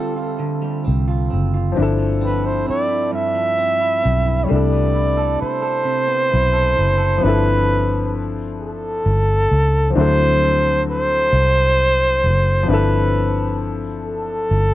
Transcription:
Already playing: clean electric guitar D3 G3 C4 F4, grand piano G3 C4 F4 A4 E5, flugelhorn A4
0.16 clean electric guitar F4
0.39 clean electric guitar D3
0.62 clean electric guitar G3
0.85 fingered electric bass C2, clean electric guitar C4
1.08 clean electric guitar F4
1.30 fingered electric bass F#1, clean electric guitar C4
1.54 clean electric guitar F4
1.72 grand piano F3 C4
1.76 fingered electric bass G1, clean electric guitar G2, grand piano D4 E4
1.82 grand piano A4
1.99 clean electric guitar F3
2.21 clean electric guitar C4, flugelhorn B4
2.44 clean electric guitar E4, flugelhorn C5
2.66 clean electric guitar C4, flugelhorn D5, muted fingered electric bass stroke
2.89 clean electric guitar E4
3.12 clean electric guitar G2, flugelhorn E5
3.35 clean electric guitar F3
3.58 clean electric guitar C4
3.80 clean electric guitar E4
4.03 fingered electric bass B1, clean electric guitar C4
4.26 clean electric guitar E4
4.44 grand piano G3, flugelhorn C#5
4.48 fingered electric bass C2, clean electric guitar C3, grand piano A3 D4, flugelhorn D5
4.53 grand piano E4 A4
4.72 clean electric guitar B3
4.94 clean electric guitar E4
5.17 clean electric guitar A4
5.39 clean electric guitar E4, flugelhorn C5, muted fingered electric bass stroke
5.62 clean electric guitar A4
5.84 clean electric guitar C3
6.07 clean electric guitar B3
6.30 fingered electric bass B1, clean electric guitar E4
6.53 clean electric guitar A4
6.76 fingered electric bass F#1, clean electric guitar E4
6.98 clean electric guitar A4
7.18 grand piano F3 C4
7.23 fingered electric bass G1, grand piano D4 E4, flugelhorn B4
7.28 grand piano A4
8.60 flugelhorn A4
9.06 fingered electric bass G1
9.51 fingered electric bass C#2
9.90 grand piano F3 C4
9.95 fingered electric bass D2, grand piano F#3 D4 E4, flugelhorn C5
10.01 grand piano A4
10.89 flugelhorn C5
11.33 fingered electric bass C2
12.24 fingered electric bass F#1
12.63 grand piano F3 C4
12.68 fingered electric bass G1, grand piano D4 E4, flugelhorn B4
12.74 grand piano A4
14.05 flugelhorn A4
14.51 fingered electric bass G1

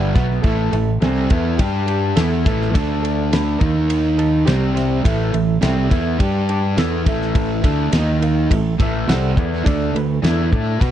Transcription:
Already playing: fingered electric bass G1, overdriven electric guitar G2 D3 G3
0.14 fingered electric bass B1, overdriven electric guitar B2 F#3 B3, reed electric piano B4 E5 F#5, kick, snare, ride
0.31 snare
0.42 fingered electric bass A1, overdriven electric guitar A2 E3 A3, reed electric piano A4 E5 A5, kick, ride
0.72 fingered electric bass A1, overdriven electric guitar A2 E3, reed electric piano A4 E5 A5, ride
1.01 fingered electric bass C2, overdriven electric guitar C3 G3 C4, reed electric piano A4 E5 G#5, snare, ride
1.30 fingered electric bass E2, overdriven electric guitar E3 B3 E4, reed electric piano A4 E5 A5, kick, ride
1.58 fingered electric bass G2, overdriven electric guitar G3 D4 G4, reed electric piano G4 D5 G5, kick, ride
1.87 reed electric piano G4 D5 G5, ride
2.16 fingered electric bass E2, overdriven electric guitar E3 B3 E4, reed electric piano A4 E5 A5, snare, ride
2.45 fingered electric bass A1, overdriven electric guitar A2 E3 A3, reed electric piano A4 E5 A5, kick, snare, ride
2.62 snare
2.74 fingered electric bass D2, overdriven electric guitar D3 A3 D4, reed electric piano A4 D5 A5, kick, ride
3.02 reed electric piano A4 D5 A5, ride
3.31 reed electric piano A4 D5 B5, snare, ride
3.59 fingered electric bass D#2, overdriven electric guitar D#3 A#3 D#4, reed electric piano A#4 D#5 A#5, kick, ride
3.90 ride
4.18 reed electric piano A#4 D#5 A5, ride
4.45 fingered electric bass C2, overdriven electric guitar C3 G3 C4, reed electric piano G4 C5 G5, snare, ride
4.74 reed electric piano G4 C5 E5, snare, ride
5.04 fingered electric bass A1, overdriven electric guitar A2 E3 A3, reed electric piano E4 A4 E5, kick, ride
5.32 fingered electric bass A1, overdriven electric guitar A2 E3, reed electric piano E4 A4 E5, ride
5.61 fingered electric bass C2, overdriven electric guitar C3 G3 C4, reed electric piano E4 A4 E5, snare, ride
5.90 fingered electric bass E2, overdriven electric guitar E3 B3 E4, reed electric piano E4 A4 E5, kick, ride
6.19 fingered electric bass G2, overdriven electric guitar G3 D4 G4, reed electric piano D4 G4 D5, kick, ride
6.49 reed electric piano D4 G4 D5, ride
6.76 fingered electric bass E2, overdriven electric guitar E3 B3 E4, reed electric piano E4 A4 E5, snare, ride
7.05 fingered electric bass A1, overdriven electric guitar A2 E3 A3, reed electric piano E4 A4 E5, kick, ride
7.22 snare
7.35 reed electric piano E4 A4 E5, kick, ride
7.62 fingered electric bass D2, overdriven electric guitar D3 A3 D4, reed electric piano E4 A4 E5, kick, ride
7.91 fingered electric bass D#2, overdriven electric guitar D#3 A#3 D#4, reed electric piano D#4 A#4 D#5, snare, ride
8.21 reed electric piano D#4 A#4 F5, ride
8.50 fingered electric bass A1, overdriven electric guitar A2 E3, reed electric piano E4 A4 E5, kick, ride
8.78 fingered electric bass A1, overdriven electric guitar A2 E3 A3, reed electric piano E4 A4, kick, ride
8.83 reed electric piano E5
9.08 fingered electric bass C2, overdriven electric guitar C3 G3 C4, reed electric piano E4 A4 F#5, snare, ride
9.36 fingered electric bass E2, overdriven electric guitar E3 B3 E4, reed electric piano E4 A4 D5, kick, snare, ride
9.53 snare
9.65 fingered electric bass D2, overdriven electric guitar D3 A3 D4, reed electric piano D4 A4 D5, kick, ride
9.94 fingered electric bass D2, overdriven electric guitar D3 A3, reed electric piano D4 A4 B4, ride
10.22 fingered electric bass E2, overdriven electric guitar E3 B3 E4, reed electric piano D4 A4 D5, snare, ride
10.51 fingered electric bass A2, overdriven electric guitar A3 E4 A4, reed electric piano D4 A4 D5, kick, ride
10.78 fingered electric bass B2, reed electric piano B3 F#4 B4, overdriven electric guitar B3 F#4 B4, kick, ride

